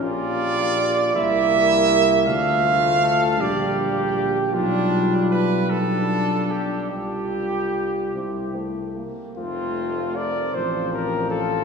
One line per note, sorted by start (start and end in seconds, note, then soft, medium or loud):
0.03 1.12 A#1 medium
0.03 1.12 A#3 medium
0.03 1.17 F4 loud
0.03 1.12 G4 medium
0.03 1.12 D5 loud
1.15 2.29 C2 medium
1.15 2.25 A#3 medium
1.15 2.28 E4 medium
1.15 2.29 G4 medium
1.15 2.25 E5 loud
2.27 3.43 D2 medium
2.27 3.43 A3 medium
2.27 2.64 D4 medium
2.27 3.42 F4 medium
2.27 3.42 F5 loud
2.65 3.02 F4 medium
3.03 3.42 A4 medium
3.40 4.55 A#1 medium
3.40 4.37 G3 medium
3.40 4.52 G4 medium
3.40 4.55 G4 loud
3.40 3.79 D5 loud
4.53 6.61 B1 medium
4.53 6.57 G3 medium
4.53 5.26 D4 loud
4.53 6.56 F4 medium
4.53 5.41 F4 medium
5.31 5.71 B4 loud
5.69 6.92 D4 medium
5.69 6.52 A4 loud
6.51 6.90 G4 medium
6.90 8.11 C2 medium
6.90 8.11 G3 medium
6.90 8.17 F4 medium
6.90 8.76 G4 medium
6.90 8.93 G4 medium
8.15 9.02 C2 medium
8.15 8.57 C4 medium
8.15 9.04 E4 medium
8.56 8.98 A3 medium
8.97 9.37 A#3 medium
9.37 10.51 F1 medium
9.37 10.51 A3 medium
9.37 11.64 C4 medium
9.37 10.12 C4 medium
9.37 10.17 F4 medium
10.16 10.54 A#4 medium
10.16 10.56 D5 loud
10.55 11.64 A1 medium
10.55 11.64 F3 medium
10.55 10.94 A4 medium
10.55 10.92 C5 medium
10.93 11.33 G4 medium
10.93 11.30 A#4 medium
11.30 11.64 F4 medium
11.30 11.64 A4 medium